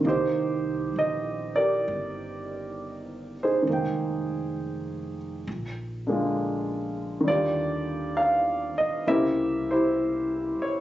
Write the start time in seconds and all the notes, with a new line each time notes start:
0.01 D#3 A#3
0.05 C2 C4 D#4 G4 C5
0.11 D#4
0.96 A#1 D#5
1.56 G4 A#4 D5
1.88 G1
3.43 D#4 G#4 C5
3.62 D#3 G#3
3.67 F1 A#3
3.73 G5
5.47 A#1
6.07 D3 G#3 A#3
6.12 F4
7.21 D#3 G3
7.28 D#2 D3 F4 G4 D5
8.17 F5
8.78 D#5, muted upright bass stroke
9.07 C2 C#3 A#3 C4 E4 G4 A#4 E5
9.71 E4 G4 C5
10.59 C#5, muted upright bass stroke